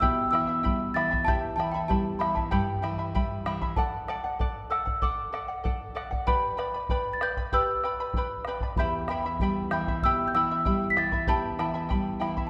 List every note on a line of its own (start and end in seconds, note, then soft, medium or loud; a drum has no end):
0.00 1.23 B2 medium
0.00 0.31 E4 medium
0.00 0.33 G4 medium
0.00 0.32 E5 medium
0.00 0.31 G5 medium
0.00 0.32 B5 medium
0.00 0.30 E6 loud
0.00 bombo low medium
0.31 0.63 E3 medium
0.31 0.48 E4 medium
0.31 0.47 E5 medium
0.31 0.48 G5 medium
0.31 0.46 B5 medium
0.31 0.96 E6 medium
0.35 bombo rim medium
0.47 0.62 E4 soft
0.47 0.63 E5 soft
0.47 0.64 B5 medium
0.63 0.95 G3 medium
0.63 0.94 E4 medium
0.63 0.95 E5 medium
0.63 0.94 G5 medium
0.63 0.95 B5 medium
0.63 bombo low medium
0.94 1.26 E3 medium
0.94 1.11 E4 medium
0.94 1.10 E5 medium
0.94 1.11 G5 soft
0.94 1.10 B5 medium
0.94 1.27 A6 medium
0.94 bombo rim medium
1.11 1.27 E4 soft
1.11 1.27 E5 soft
1.11 1.27 B5 soft
1.11 bombo low medium
1.25 2.48 E2 medium
1.25 1.58 E4 medium
1.25 1.59 G4 medium
1.25 1.58 E5 medium
1.25 1.57 G5 medium
1.25 1.55 A5 loud
1.25 1.58 B5 medium
1.25 bombo low medium
1.56 1.88 E3 soft
1.56 1.74 E4 medium
1.56 1.74 E5 medium
1.56 1.74 G5 medium
1.56 1.73 A5 medium
1.56 1.73 B5 medium
1.56 bombo rim soft
1.72 1.89 E5 medium
1.72 1.79 G5 medium
1.72 1.90 B5 medium
1.76 1.88 E4 soft
1.88 2.20 G3 medium
1.88 2.19 E4 medium
1.88 2.19 E5 medium
1.88 2.18 G5 medium
1.88 2.18 A5 medium
1.88 2.20 B5 medium
1.88 bombo low medium
2.19 2.51 E3 medium
2.19 2.36 E4 medium
2.19 2.35 E5 medium
2.19 2.36 G5 medium
2.19 2.34 B5 medium
2.19 bombo rim medium
2.35 2.50 E4 soft
2.35 2.50 E5 soft
2.35 2.50 A5 medium
2.35 2.51 B5 soft
2.35 bombo low medium
2.51 3.73 G2 medium
2.51 2.81 E4 medium
2.51 2.83 G4 medium
2.51 2.82 E5 medium
2.51 3.41 G5 medium
2.51 2.81 G5 medium
2.51 2.83 B5 medium
2.51 bombo low medium
2.82 3.14 E3 medium
2.82 2.98 E4 medium
2.82 2.98 E5 medium
2.82 2.98 G5 medium
2.82 2.97 B5 medium
2.82 bombo rim soft
2.99 3.14 E4 soft
2.99 3.14 E5 soft
2.99 3.14 B5 soft
3.15 3.45 G3 medium
3.15 3.45 E4 medium
3.15 3.46 E5 medium
3.15 3.45 G5 medium
3.15 3.46 B5 medium
3.15 bombo low medium
3.46 3.76 E3 medium
3.46 3.61 E4 medium
3.46 3.61 E5 medium
3.46 3.61 G5 medium
3.46 3.60 B5 medium
3.46 bombo rim medium
3.62 3.78 E4 soft
3.62 3.77 E5 soft
3.62 3.77 B5 medium
3.62 bombo low medium
3.76 4.07 A4 medium
3.76 4.08 D5 medium
3.76 4.09 F#5 medium
3.76 4.08 A5 medium
3.76 bombo low medium
4.08 4.24 A4 medium
4.08 4.24 D5 medium
4.08 4.23 F#5 medium
4.08 4.73 A5 medium
4.08 bombo rim medium
4.24 4.39 D5 soft
4.24 4.40 F#5 medium
4.39 4.69 A4 medium
4.39 4.70 D5 medium
4.39 4.70 F#5 medium
4.39 bombo low medium
4.70 4.86 A4 medium
4.70 4.86 D5 medium
4.70 4.84 F#5 medium
4.70 5.03 E6 medium
4.70 bombo rim medium
4.86 5.01 D5 soft
4.86 5.02 F#5 soft
4.86 bombo low medium
5.02 5.31 A4 medium
5.02 5.32 D5 medium
5.02 5.33 F#5 medium
5.02 5.92 D6 medium
5.02 bombo low medium
5.33 5.49 A4 medium
5.33 5.48 D5 medium
5.33 5.47 F#5 medium
5.33 bombo rim soft
5.48 5.63 D5 soft
5.48 5.64 F#5 medium
5.64 5.93 A4 medium
5.64 5.94 D5 medium
5.64 5.95 F#5 medium
5.64 bombo low medium
5.95 6.11 A4 medium
5.95 6.11 D5 medium
5.95 6.10 F#5 medium
5.95 bombo rim medium
6.11 6.26 D5 soft
6.11 6.27 F#5 medium
6.11 bombo low medium
6.27 6.58 G4 medium
6.27 6.57 B4 medium
6.27 6.58 D5 medium
6.27 6.56 G5 medium
6.27 6.57 B5 medium
6.27 6.58 B5 medium
6.27 bombo low medium
6.57 6.74 B4 medium
6.57 6.74 D5 medium
6.57 6.73 G5 medium
6.57 7.10 B5 medium
6.57 6.73 B5 medium
6.57 bombo rim medium
6.74 6.89 B4 soft
6.74 6.90 D5 soft
6.74 6.90 B5 medium
6.89 7.21 B4 medium
6.89 7.21 D5 medium
6.89 7.20 G5 medium
6.89 7.21 B5 medium
6.89 bombo low medium
7.13 7.21 A6 medium
7.21 7.37 B4 medium
7.21 7.37 D5 medium
7.21 7.37 G5 medium
7.21 7.36 B5 medium
7.21 7.36 G6 loud
7.21 bombo rim medium
7.37 7.52 B4 soft
7.37 7.52 D5 soft
7.37 7.53 B5 medium
7.37 bombo low medium
7.52 7.84 G4 medium
7.52 7.83 B4 medium
7.52 7.84 D5 medium
7.52 7.82 G5 medium
7.52 7.84 B5 medium
7.52 8.43 E6 loud
7.52 bombo low medium
7.83 7.99 B4 medium
7.83 8.00 D5 medium
7.83 7.99 G5 medium
7.83 7.99 B5 medium
7.83 bombo rim soft
8.00 8.16 B4 soft
8.00 8.16 D5 soft
8.00 8.15 B5 medium
8.14 8.46 B4 medium
8.14 8.47 D5 medium
8.14 8.46 G5 medium
8.14 bombo low medium
8.18 8.47 B5 medium
8.45 8.62 B4 medium
8.45 8.62 D5 medium
8.45 8.62 G5 medium
8.45 8.62 B5 medium
8.45 bombo rim medium
8.61 8.78 B4 soft
8.61 8.78 D5 soft
8.61 8.78 B5 soft
8.61 bombo low medium
8.76 9.98 E2 medium
8.76 9.09 E4 medium
8.76 9.09 G4 medium
8.76 9.09 E5 medium
8.76 9.09 G5 medium
8.76 8.92 B5 medium
8.76 9.10 B5 medium
8.76 bombo low medium
9.08 9.39 E3 medium
9.08 9.25 E4 medium
9.08 9.25 E5 medium
9.08 9.25 G5 medium
9.08 9.67 B5 medium
9.08 9.24 B5 medium
9.08 bombo rim medium
9.26 9.41 E4 soft
9.26 9.41 E5 soft
9.26 9.40 B5 medium
9.39 9.71 G3 medium
9.39 9.72 E4 medium
9.39 9.71 E5 medium
9.39 9.71 G5 medium
9.39 9.72 B5 medium
9.39 bombo low medium
9.71 10.02 E3 medium
9.71 9.88 E4 medium
9.71 9.87 E5 medium
9.71 9.87 G5 medium
9.71 9.87 B5 medium
9.71 10.03 G6 medium
9.71 bombo rim medium
9.88 10.03 E4 soft
9.88 10.03 E5 medium
9.88 10.03 B5 medium
9.88 bombo low medium
10.03 11.24 B2 medium
10.03 10.35 E4 medium
10.03 10.35 G4 medium
10.03 10.35 E5 medium
10.03 10.34 G5 medium
10.03 10.35 B5 medium
10.03 10.26 E6 loud
10.03 bombo low medium
10.28 10.34 G6 medium
10.35 10.64 E3 medium
10.35 10.50 E4 medium
10.35 10.51 E5 medium
10.35 10.50 G5 medium
10.35 10.50 B5 medium
10.35 10.86 E6 loud
10.35 bombo rim soft
10.51 10.65 E4 soft
10.51 10.65 E5 soft
10.51 10.65 B5 medium
10.65 10.96 G3 medium
10.65 10.96 E4 medium
10.65 10.96 E5 medium
10.65 10.95 G5 medium
10.65 10.96 B5 medium
10.65 bombo low medium
10.90 10.97 B6 medium
10.96 11.27 E3 medium
10.96 11.12 E4 medium
10.96 11.12 E5 medium
10.96 11.12 G5 medium
10.96 11.11 B5 medium
10.96 11.26 A6 medium
10.96 bombo rim medium
11.12 11.27 E4 soft
11.12 11.27 E5 medium
11.12 11.27 B5 soft
11.12 bombo low medium
11.27 12.49 E2 medium
11.27 11.58 E4 medium
11.27 11.59 G4 medium
11.27 11.59 E5 medium
11.27 11.57 G5 medium
11.27 11.57 A5 loud
11.27 11.59 B5 medium
11.27 bombo low medium
11.59 11.89 E3 medium
11.59 11.74 E4 medium
11.59 11.74 E5 medium
11.59 11.74 G5 medium
11.59 12.42 A5 medium
11.59 11.73 B5 medium
11.59 bombo rim medium
11.74 11.88 E4 soft
11.74 11.89 E5 medium
11.74 11.89 B5 medium
11.89 12.21 G3 medium
11.89 12.19 E4 medium
11.89 12.20 E5 medium
11.89 12.18 G5 medium
11.89 12.20 B5 medium
11.89 bombo low medium
12.20 12.50 E3 medium
12.20 12.36 E4 medium
12.20 12.36 E5 medium
12.20 12.36 G5 medium
12.20 12.36 B5 medium
12.20 bombo rim soft
12.37 12.50 E4 soft
12.37 12.50 E5 soft
12.37 12.50 B5 medium
12.37 bombo low medium
12.47 12.50 A5 medium